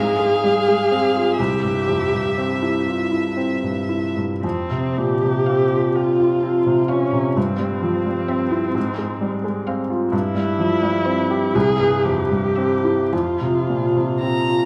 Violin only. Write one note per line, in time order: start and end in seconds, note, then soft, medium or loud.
0.00 1.38 F5 soft
1.38 4.16 E5 soft
5.46 5.83 F5 soft
6.88 7.24 F5 soft
8.29 8.64 E5 soft
9.67 10.01 F5 soft
11.05 11.41 C5 soft
12.56 12.97 E5 soft
14.22 14.65 A#5 soft